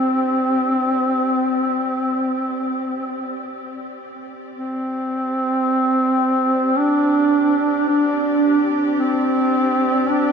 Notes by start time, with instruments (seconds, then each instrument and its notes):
Already playing: duduk C4, cello section C4 G4 D5
4.56 duduk C4
6.78 duduk D4
7.88 duduk D4
8.99 duduk C4
10.09 duduk D4